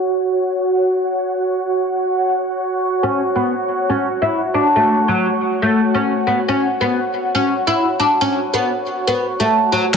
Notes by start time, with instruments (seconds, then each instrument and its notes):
Already playing: synth drone F#4, ambient pad F#4 C#5 F#5
3.03 oud C#4
3.36 oud B3
3.89 oud C#4
4.22 oud E4
4.54 oud D4
4.76 oud A3
5.08 oud F#3
5.62 oud A3
5.95 oud C#4
6.27 oud B3
6.48 oud C#4
6.81 oud B3
7.35 oud C#4
7.67 oud E4
8.00 oud D4
8.21 oud C#4
8.54 oud B3
9.07 oud B3
9.40 oud A3
9.72 oud F#3
9.94 acid bass F#3, oud C#4, ambient pad F#4, snare, closed hi-hat